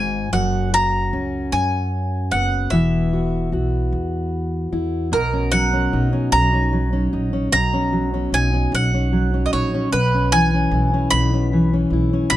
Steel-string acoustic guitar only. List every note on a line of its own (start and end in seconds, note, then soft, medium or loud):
0.00 0.32 G#2 medium
0.00 0.29 D#4 medium
0.00 0.33 F#4 medium
0.33 2.73 F#2 medium
0.33 0.73 F#4 medium
0.73 2.73 F#4 medium
1.13 2.73 C#4 medium
2.34 2.69 B3 medium
2.72 5.13 E3 medium
2.72 5.08 B3 medium
2.72 4.71 E4 medium
2.72 3.12 F#4 medium
3.13 3.52 F#4 medium
3.53 7.53 F#4 medium
4.73 5.08 E4 medium
5.12 6.32 B2 medium
5.33 5.73 C#4 medium
5.53 6.72 F#3 medium
5.73 6.12 C#4 medium
5.93 7.12 D#4 medium
6.13 6.53 C#4 medium
6.53 6.92 C#4 medium
6.73 7.48 F#3 medium
6.93 7.33 C#4 medium
7.13 7.48 D#4 medium
7.33 7.55 C#4 medium
7.52 8.72 B2 medium
7.74 8.13 C#4 medium
7.93 9.11 F#3 medium
8.14 8.53 C#4 medium
8.34 9.52 D#4 medium
8.54 8.94 C#4 medium
8.94 9.33 C#4 medium
9.12 9.87 F#3 medium
9.34 9.74 C#4 medium
9.53 9.88 D#4 medium
9.74 9.96 C#4 medium
9.93 10.32 B2 medium
10.14 10.54 C#4 medium
10.33 11.52 E3 medium
10.54 10.93 C#4 medium
10.74 11.92 E4 medium
10.94 11.33 C#4 medium
11.13 11.52 B2 medium
11.34 11.73 C#4 medium
11.53 12.37 E3 medium
11.73 12.13 C#4 medium
11.93 12.27 E4 medium
12.13 12.35 C#4 medium
12.32 12.37 B2 medium